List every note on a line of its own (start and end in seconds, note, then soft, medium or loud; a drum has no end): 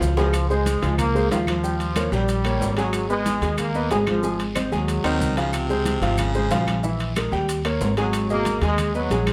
0.00 0.77 C#2 medium
0.00 0.11 F3 medium
0.00 0.12 F4 loud
0.00 0.12 F5 loud
0.00 low conga medium
0.00 low timbale medium
0.00 short guiro medium
0.00 maracas medium
0.17 0.47 F3 medium
0.17 0.31 G#3 medium
0.17 0.31 G#4 medium
0.17 0.31 G#5 medium
0.17 low conga medium
0.17 low timbale medium
0.17 short guiro medium
0.17 maracas soft
0.33 high conga soft
0.33 high timbale medium
0.33 long guiro medium
0.33 claves medium
0.33 maracas medium
0.50 0.98 G#3 loud
0.50 0.77 G#3 medium
0.50 0.77 G#4 medium
0.50 0.77 C5 medium
0.50 high conga soft
0.50 maracas soft
0.66 high conga medium
0.66 high timbale medium
0.66 short guiro medium
0.66 maracas medium
0.82 1.28 C#2 medium
0.82 1.09 F3 medium
0.82 1.09 F4 medium
0.82 1.09 F5 medium
0.82 high timbale medium
0.82 short guiro medium
0.82 maracas soft
0.98 1.29 A#3 loud
0.98 high conga soft
0.98 low conga medium
0.98 high timbale medium
0.98 long guiro medium
0.98 claves medium
0.98 maracas medium
1.15 1.28 G#3 medium
1.15 1.28 G#4 medium
1.15 1.29 C5 medium
1.15 maracas soft
1.31 2.07 D#2 medium
1.31 1.38 D#3 medium
1.31 1.58 F3 medium
1.31 1.58 F4 medium
1.31 1.58 F5 medium
1.31 high conga medium
1.31 high timbale medium
1.31 low timbale medium
1.31 short guiro medium
1.31 maracas medium
1.47 2.09 F3 medium
1.47 high conga medium
1.47 high timbale medium
1.47 short guiro medium
1.47 claves medium
1.47 maracas soft
1.63 1.90 G3 medium
1.63 1.90 G4 medium
1.63 1.91 G5 medium
1.63 high conga soft
1.63 long guiro medium
1.63 maracas medium
1.80 high conga soft
1.80 high timbale medium
1.80 maracas soft
1.96 2.10 A#3 medium
1.96 2.10 A#4 medium
1.96 2.10 C#5 medium
1.96 high conga medium
1.96 high timbale medium
1.96 short guiro medium
1.96 claves medium
1.96 maracas medium
2.12 2.58 A#1 medium
2.12 2.39 G3 medium
2.12 2.74 G3 loud
2.12 2.39 G4 medium
2.12 2.39 G5 medium
2.12 high conga soft
2.12 short guiro medium
2.12 maracas soft
2.29 high conga soft
2.29 high timbale medium
2.29 long guiro medium
2.29 maracas medium
2.44 2.72 A#3 medium
2.44 2.72 A#4 medium
2.44 2.72 C#5 medium
2.44 high conga soft
2.44 high timbale medium
2.44 claves medium
2.44 maracas soft
2.60 3.36 G#1 medium
2.60 high conga medium
2.60 low timbale medium
2.60 short guiro medium
2.60 maracas medium
2.77 3.08 F#3 medium
2.77 3.04 G#3 medium
2.77 3.04 G#4 medium
2.77 3.04 G#5 medium
2.77 high conga soft
2.77 high timbale medium
2.77 short guiro medium
2.77 maracas soft
2.93 high conga soft
2.93 high timbale medium
2.93 long guiro medium
2.93 claves medium
2.93 maracas medium
3.09 3.55 G#3 loud
3.09 3.37 B3 medium
3.09 3.37 B4 medium
3.09 3.37 D#5 medium
3.09 high conga soft
3.09 maracas soft
3.26 high conga loud
3.26 high timbale medium
3.26 short guiro medium
3.26 maracas medium
3.41 3.87 D#2 medium
3.41 3.69 G#3 medium
3.41 3.69 G#4 medium
3.41 3.69 G#5 medium
3.41 high timbale medium
3.41 short guiro medium
3.41 maracas soft
3.58 3.89 A#3 medium
3.58 high conga soft
3.58 low conga medium
3.58 high timbale medium
3.58 long guiro medium
3.58 claves medium
3.58 maracas medium
3.75 3.88 B3 medium
3.75 3.88 B4 medium
3.75 3.89 D#5 medium
3.75 high conga soft
3.75 maracas soft
3.90 4.66 G#1 medium
3.90 3.98 G#3 medium
3.90 4.18 G#3 medium
3.90 4.18 G#4 medium
3.90 4.18 G#5 medium
3.90 high conga medium
3.90 high timbale medium
3.90 low timbale medium
3.90 short guiro medium
3.90 maracas medium
4.07 4.43 F3 medium
4.07 high conga medium
4.07 high timbale medium
4.07 short guiro medium
4.07 claves medium
4.07 maracas soft
4.23 4.50 G#3 medium
4.23 4.50 G#4 medium
4.23 4.50 G#5 medium
4.23 high conga soft
4.23 long guiro medium
4.23 maracas medium
4.40 high conga soft
4.40 high timbale medium
4.40 maracas soft
4.55 4.69 C4 medium
4.55 4.69 C5 medium
4.55 4.69 D#5 medium
4.55 high conga loud
4.55 high timbale medium
4.55 short guiro medium
4.55 claves medium
4.55 maracas medium
4.72 5.02 D#2 medium
4.72 5.33 F#3 medium
4.72 4.99 G#3 medium
4.72 4.99 G#4 medium
4.72 4.99 G#5 medium
4.72 high conga soft
4.72 short guiro medium
4.72 maracas soft
4.88 high conga soft
4.88 high timbale medium
4.88 long guiro medium
4.88 maracas medium
5.04 5.20 D#2 medium
5.04 5.39 D#3 loud
5.04 5.31 C4 medium
5.04 5.31 C5 medium
5.04 5.32 D#5 medium
5.04 high timbale medium
5.04 claves medium
5.04 maracas soft
5.20 5.96 C#2 medium
5.20 high conga medium
5.20 short guiro medium
5.20 maracas medium
5.37 5.54 C#3 medium
5.37 5.64 F3 medium
5.37 5.64 F4 medium
5.37 5.64 F5 medium
5.37 high conga soft
5.37 high timbale medium
5.37 short guiro medium
5.37 maracas soft
5.53 6.20 C3 medium
5.53 high conga soft
5.53 high timbale medium
5.53 long guiro medium
5.53 claves medium
5.53 maracas medium
5.69 5.96 G#3 medium
5.69 5.97 G#4 medium
5.69 5.97 C5 medium
5.69 high conga soft
5.69 maracas soft
5.85 high conga medium
5.85 high timbale medium
5.85 short guiro medium
5.85 maracas medium
6.01 6.47 G#1 medium
6.01 6.29 F3 medium
6.01 6.29 F4 medium
6.01 6.29 F5 medium
6.01 high conga soft
6.01 high timbale medium
6.01 short guiro medium
6.01 maracas soft
6.18 6.84 C#3 medium
6.18 high conga soft
6.18 low conga medium
6.18 high timbale medium
6.18 long guiro medium
6.18 claves medium
6.18 maracas medium
6.34 6.48 G#3 medium
6.34 6.48 G#4 medium
6.34 6.49 C5 medium
6.34 high conga soft
6.34 maracas soft
6.50 7.26 A#1 medium
6.50 6.78 F3 medium
6.50 6.78 F4 medium
6.50 6.78 F5 medium
6.50 high conga medium
6.50 high timbale medium
6.50 low timbale medium
6.50 short guiro medium
6.50 maracas medium
6.67 high conga medium
6.67 high timbale medium
6.67 short guiro medium
6.67 claves medium
6.67 maracas soft
6.83 7.10 E3 medium
6.83 7.10 E4 medium
6.83 7.10 E5 medium
6.83 long guiro medium
6.83 maracas medium
6.99 high conga soft
6.99 high timbale medium
6.99 maracas soft
7.16 7.30 G#3 medium
7.16 7.30 G#4 medium
7.16 7.30 A#4 medium
7.16 high conga loud
7.16 high timbale loud
7.16 short guiro medium
7.16 claves medium
7.16 maracas medium
7.32 7.77 D#2 medium
7.32 7.59 G3 medium
7.32 7.59 G4 medium
7.32 7.59 G5 medium
7.32 short guiro medium
7.32 maracas soft
7.48 high conga soft
7.48 high timbale medium
7.48 long guiro medium
7.48 maracas medium
7.65 7.92 A#3 medium
7.65 7.92 A#4 medium
7.65 7.92 C#5 medium
7.65 high conga soft
7.65 high timbale loud
7.65 claves medium
7.65 maracas soft
7.80 8.56 G#1 medium
7.80 high conga medium
7.80 low timbale medium
7.80 short guiro medium
7.80 maracas medium
7.97 8.28 F#3 medium
7.97 8.24 G#3 medium
7.97 8.24 G#4 medium
7.97 8.24 G#5 medium
7.97 high timbale medium
7.97 short guiro medium
7.97 maracas soft
8.13 high conga soft
8.13 high timbale loud
8.13 long guiro medium
8.13 claves medium
8.13 maracas medium
8.30 8.56 B2 medium
8.30 8.61 A#3 loud
8.30 8.57 G#4 medium
8.30 8.57 D#5 medium
8.30 high conga soft
8.30 maracas soft
8.45 high conga loud
8.45 high timbale medium
8.45 short guiro medium
8.45 maracas medium
8.61 9.07 D#2 loud
8.61 8.89 G#3 medium
8.61 8.93 G#3 loud
8.61 8.89 G#4 medium
8.61 8.89 G#5 medium
8.61 high conga soft
8.61 high timbale medium
8.61 short guiro medium
8.61 maracas soft
8.78 high conga soft
8.78 low conga medium
8.78 high timbale loud
8.78 long guiro medium
8.78 claves medium
8.78 maracas medium
8.95 9.25 F#3 medium
8.95 9.08 B3 medium
8.95 9.08 B4 medium
8.95 9.09 D#5 medium
8.95 high conga soft
8.95 maracas soft
9.10 9.33 A#1 medium
9.10 9.33 G#3 medium
9.10 9.33 G#4 medium
9.10 9.33 G#5 medium
9.10 high conga medium
9.10 high timbale medium
9.10 short guiro medium
9.10 maracas medium
9.27 9.33 F3 medium
9.27 high conga medium
9.27 high timbale medium
9.27 short guiro medium
9.27 claves medium
9.27 maracas soft